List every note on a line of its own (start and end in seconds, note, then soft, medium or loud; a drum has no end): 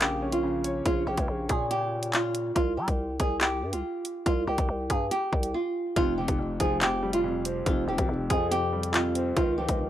0.00 0.82 A#1 loud
0.00 0.43 C#3 medium
0.00 0.43 F3 medium
0.00 0.86 A#3 medium
0.00 0.31 G4 medium
0.00 clap loud
0.00 closed hi-hat medium
0.22 0.86 C#4 medium
0.32 0.82 F4 medium
0.32 closed hi-hat medium
0.43 0.86 C#3 loud
0.64 0.86 C#5 medium
0.64 closed hi-hat medium
0.86 1.06 A#1 loud
0.86 1.02 F4 loud
0.86 kick loud
0.86 closed hi-hat medium
1.07 1.17 A#1 loud
1.07 1.47 G4 medium
1.17 1.28 C#2 loud
1.17 kick loud
1.17 closed hi-hat medium
1.28 1.49 A#1 loud
1.49 2.52 A#2 loud
1.49 1.66 G#4 medium
1.49 kick medium
1.49 closed hi-hat medium
1.71 2.11 G4 medium
1.71 closed hi-hat medium
2.03 closed hi-hat medium
2.13 2.54 F4 medium
2.13 clap loud
2.13 closed hi-hat medium
2.35 closed hi-hat medium
2.56 2.79 C2 loud
2.56 2.72 F4 loud
2.56 kick loud
2.56 closed hi-hat medium
2.77 2.87 G3 loud
2.77 3.17 G4 medium
2.88 3.18 C2 loud
2.88 kick loud
2.88 closed hi-hat medium
3.20 3.64 C2 loud
3.20 3.36 G#4 medium
3.20 kick medium
3.20 closed hi-hat medium
3.41 3.71 G4 medium
3.41 clap loud
3.41 closed hi-hat medium
3.62 3.74 G2 loud
3.73 3.83 C2 loud
3.73 4.23 F4 medium
3.73 closed hi-hat medium
4.05 closed hi-hat medium
4.26 4.47 C2 loud
4.26 4.42 F4 loud
4.26 kick loud
4.26 closed hi-hat medium
4.47 4.58 C2 loud
4.47 4.87 G4 medium
4.58 4.68 C2 loud
4.58 kick loud
4.58 closed hi-hat medium
4.69 4.89 C2 loud
4.90 5.10 G2 loud
4.90 5.06 G#4 medium
4.90 kick medium
4.90 closed hi-hat medium
5.11 5.51 G4 medium
5.11 closed hi-hat medium
5.33 5.54 C2 loud
5.33 kick loud
5.43 closed hi-hat medium
5.54 5.94 F4 medium
5.96 6.27 F1 loud
5.96 6.38 F2 loud
5.96 6.13 F4 loud
5.96 kick loud
5.96 closed hi-hat medium
6.18 7.24 C3 medium
6.18 6.58 G4 medium
6.28 6.59 F1 loud
6.28 kick loud
6.28 closed hi-hat medium
6.39 6.80 F2 medium
6.60 7.63 F1 loud
6.60 7.67 F3 loud
6.60 6.76 G#4 medium
6.60 kick medium
6.60 closed hi-hat medium
6.81 7.23 F2 medium
6.81 7.12 G4 medium
6.81 clap loud
6.81 closed hi-hat medium
7.03 8.09 G3 medium
7.13 7.63 F4 medium
7.13 closed hi-hat medium
7.24 7.65 F2 medium
7.45 8.52 C4 medium
7.45 closed hi-hat medium
7.66 7.87 F1 loud
7.66 8.08 F2 medium
7.66 7.83 F4 loud
7.66 kick loud
7.66 closed hi-hat medium
7.88 7.98 F1 loud
7.88 8.94 C3 medium
7.88 8.28 G4 medium
7.98 8.08 G#1 loud
7.98 kick loud
7.98 closed hi-hat medium
8.09 8.29 F1 loud
8.09 8.50 F2 medium
8.30 9.33 F2 loud
8.30 9.37 F3 medium
8.30 8.46 G#4 medium
8.30 kick medium
8.30 closed hi-hat medium
8.51 8.92 F2 medium
8.51 8.91 G4 loud
8.51 closed hi-hat medium
8.73 9.37 G3 medium
8.83 closed hi-hat medium
8.93 9.37 F2 medium
8.93 9.34 F4 medium
8.93 clap loud
8.93 closed hi-hat medium
9.15 9.37 C4 medium
9.15 closed hi-hat medium
9.36 9.67 C#2 loud
9.36 9.78 D#3 loud
9.36 9.53 F4 loud
9.36 kick loud
9.36 closed hi-hat medium
9.58 9.90 F3 medium
9.58 9.90 G4 medium
9.69 9.90 C#2 loud
9.69 kick loud
9.69 closed hi-hat medium
9.79 9.90 D#3 medium